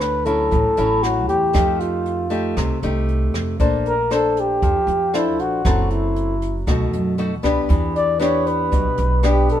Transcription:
Already playing: D2 D3
0.01 B4, cross-stick, closed hi-hat
0.26 F#3 C#4 E4 A4, closed hi-hat
0.51 A1 A2, kick, closed hi-hat
0.77 A1 F#3 C#4 E4, closed hi-hat
1.03 F#4, cross-stick, closed hi-hat
1.28 E2 G4, closed hi-hat
1.53 F2 F3 A3 D#4 G4, kick, cross-stick, closed hi-hat
1.80 F4, closed hi-hat
2.06 closed hi-hat
2.30 A3 D#4 G4, closed hi-hat
2.57 C2 C3, kick, cross-stick, closed hi-hat
2.83 C2 A3 D#4 G4, closed hi-hat
3.08 closed hi-hat
3.34 F2, cross-stick, closed hi-hat
3.60 A#1 A#3 D4 A4 C5, kick, closed hi-hat
3.86 A#4, closed hi-hat
4.11 D4 A4 C5, cross-stick, closed hi-hat
4.37 G4, closed hi-hat
4.62 F2 F3, kick, closed hi-hat
4.87 F2, closed hi-hat
5.14 D4 E4 A4 C5, cross-stick, closed hi-hat
5.39 A#1 F#4, closed hi-hat
5.65 F#1 F#3 C4 E4 A4, kick, cross-stick, closed hi-hat
5.91 E4, closed hi-hat
6.16 closed hi-hat
6.42 closed hi-hat
6.67 B1 B2 A3 D#4 F#4, kick, cross-stick, closed hi-hat
6.92 F#2, closed hi-hat
7.18 A3 D#4 F#4, closed hi-hat
7.43 B1 B3 D4 G4, kick, cross-stick, closed hi-hat
7.69 E2 E3, kick, closed hi-hat
7.96 D5, closed hi-hat
8.20 B3 D4 G4 C#5, cross-stick, closed hi-hat
8.47 B4, closed hi-hat
8.72 B1 B2, kick, closed hi-hat
8.98 B1, closed hi-hat
9.23 B3 D4 G4, cross-stick, closed hi-hat
9.49 A#1 A4, closed hi-hat

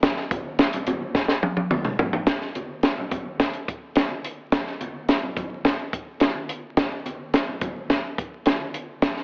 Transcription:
0.03 kick, snare, closed hi-hat
0.17 snare
0.31 kick, closed hi-hat, high conga
0.59 snare, closed hi-hat, muted conga
0.73 closed hi-hat, muted conga, low conga
0.87 closed hi-hat, high conga, low conga
1.15 kick, snare
1.28 snare
1.43 high tom
1.57 high tom
1.71 mid tom, muted conga, high conga
1.85 mid tom, muted conga
1.99 floor tom, low conga
2.13 floor tom
2.27 kick, snare, closed hi-hat, muted conga
2.41 snare, muted conga
2.55 closed hi-hat, high conga
2.83 snare, closed hi-hat, muted conga
2.98 low conga
3.11 kick, closed hi-hat, high conga, low conga
3.40 kick, snare, closed hi-hat, muted conga
3.53 closed hi-hat
3.68 kick, closed hi-hat
3.96 snare, closed hi-hat, high conga
4.10 muted conga
4.24 closed hi-hat
4.52 kick, snare, closed hi-hat
4.66 snare
4.81 closed hi-hat, high conga
5.09 snare, closed hi-hat
5.23 muted conga, low conga
5.37 kick, closed hi-hat, high conga, low conga
5.65 kick, snare, closed hi-hat, muted conga
5.79 muted conga
5.93 kick, closed hi-hat
6.20 snare, closed hi-hat, muted conga, high conga
6.49 closed hi-hat
6.77 kick, snare, closed hi-hat
6.92 muted conga
7.06 closed hi-hat, high conga
7.34 snare, closed hi-hat
7.48 low conga
7.61 kick, closed hi-hat, high conga, low conga
7.90 kick, snare, closed hi-hat
8.18 kick, closed hi-hat
8.46 snare, closed hi-hat, muted conga, high conga
8.61 muted conga
8.74 closed hi-hat
9.02 kick, snare, closed hi-hat
9.16 snare

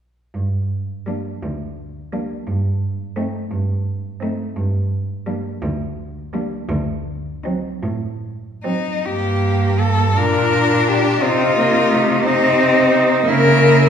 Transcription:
0.34 G2
1.07 G3 A#3 D4
1.43 D2
2.12 G3 A#3 D4
2.47 G2
3.16 A3 C4 D#4
3.51 G2
4.20 A3 C4 D#4
4.56 G2
5.27 G3 A#3 D4
5.62 D2
6.33 G3 A#3 D4
6.69 D2
7.44 F#3 C4 D#4
7.83 A2
8.64 F#3 C4 D#4
9.05 G2 A#3 G4
9.80 A4
10.16 A#2 D4 A#4
10.88 G4
11.21 C3 C4 D#4 F4
11.57 A#3
11.91 A3
12.24 C4 D#4
13.27 C#3 A#3 E4 A#4

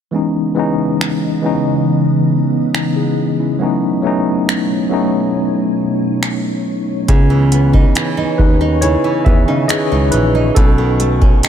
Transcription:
0.11 C#3 E3 G#3 B3 C#4 D#5
0.16 D#4
0.55 E3 G#3 B3 C#4
0.59 D#4
1.01 finger snap
1.42 E3 G#3 B3 C#4
1.46 D#4
2.74 B3 D#4, finger snap
2.96 E4 G#4
3.40 C#4 E4
3.59 B2 F#3 A3 B3 C#4 D#4 C#5
3.63 D#4
4.02 F#3 A3 B3 C#4
4.07 D#4
4.49 finger snap
4.89 F#3 A3 B3 C#4
4.93 D#4
6.23 finger snap
7.08 C#2 C#3 B3 C#4 B4 C#5 G#5 C#6, kick, closed hi-hat
7.30 E3
7.52 B3, closed hi-hat
7.73 D#4, kick
7.95 E3, finger snap, closed hi-hat
8.17 D#2 D#4
8.38 D#2 D#4 B4, kick
8.61 D#4
8.81 C#3 E4 C#5, closed hi-hat
9.04 E3
9.25 E2 D#3 E3 B3 G#4 E5, kick
9.48 C#3 D#4
9.68 E3 G#4 D#5, finger snap, closed hi-hat
9.92 C#2 D#4
10.11 A#1 E3 D#4 B4, closed hi-hat
10.35 D#4
10.55 B1 B2 C#4 A4 B4 D#5 A5, kick, closed hi-hat
10.78 D#3
11.00 A3, closed hi-hat
11.21 C#4, kick
11.43 D#3, finger snap, closed hi-hat

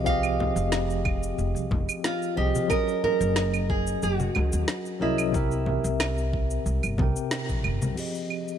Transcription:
Already playing: C2 F3 C4 G4 G#4 D#5
0.04 F3 C4 G4 G#4 F5, kick, cabasa
0.09 D#5
0.23 cabasa, claves
0.40 low conga
0.56 F1, cabasa
0.72 snare, cabasa
0.90 cabasa
1.05 kick, claves
1.23 cabasa
1.38 F1, cabasa
1.55 C2, cabasa
1.71 F1, kick, low conga
1.89 cabasa, claves
2.04 F4, snare, cabasa
2.22 cabasa
2.36 C2 F3 C4 G4 G#4 D#5
2.55 high conga, cabasa
2.68 F#3 C#4 G#4 A#4, kick, cabasa, claves
2.73 D#5
2.88 cabasa
3.04 A#4, low conga
3.21 F#1, cabasa
3.36 snare, cabasa
3.54 cabasa, claves
3.70 G#4, kick
3.87 cabasa
4.03 F#1 F#4, cabasa
4.20 high conga, cabasa
4.35 C#2, low conga, claves
4.53 D#2, cabasa
4.68 snare, cabasa
4.86 cabasa
5.00 C2 F#3 C#4 E4 G#4 A#4 D#5
5.18 cabasa, claves
5.32 C3 C4 G4 A#4, kick, cabasa
5.37 E5
5.51 cabasa
5.66 low conga
5.84 C2, cabasa
6.00 snare, cabasa, claves
6.18 cabasa
6.33 kick
6.51 cabasa
6.66 C2, cabasa
6.83 G1, cabasa, claves
6.97 C2 C3 C4 G4 A#4, kick, low conga
7.02 G5
7.16 cabasa
7.31 snare, cabasa
7.49 A#1, kick, cabasa
7.64 G1, claves
7.82 C2, high conga, cabasa
7.95 F3 C4 G4 G#4, crash, cabasa
8.00 D#5
8.15 cabasa
8.30 claves
8.48 cabasa

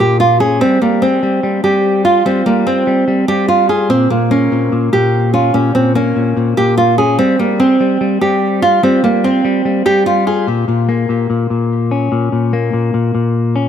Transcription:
Already playing: A#3
0.00 A#2 G4
0.20 F4
0.40 C#4 G#4
0.61 G3 C4
0.82 G3 A#3
1.02 C4
1.23 G3
1.43 G3
1.64 G3 G4
2.05 F4
2.26 G3 C4
2.46 G3 A#3
2.67 C4
2.87 G3
3.08 G3
3.28 G3 G4
3.48 F4
3.69 F4 G#4
3.90 A#2 C4
4.10 A#2 A#3
4.31 A#3 C#4
4.52 A#2
4.72 A#2
4.93 A#2 G4
5.34 C#4 F4
5.54 A#2 C#4
5.75 A#2 C4
5.95 A#3 C#4
6.16 A#2
6.37 A#2
6.57 A#2 G4
6.77 F4
6.98 C#4 G#4
7.19 G3 C4
7.39 G3 A#3
7.60 C4
7.80 G3
8.01 G3
8.21 G3 G4
8.62 F4
8.83 G3 C4
9.04 G3 A#3
9.24 C4
9.45 G3
9.65 G3
9.86 G3 G4
10.06 F4
10.27 F4 G#4
10.47 A#2
10.68 A#2
10.89 A#3
11.09 A#2
11.30 A#2
11.50 A#2
11.91 C#4
12.12 A#2
12.32 A#2
12.53 A#3
12.73 A#2
12.94 A#2
13.15 A#2
13.56 C#4

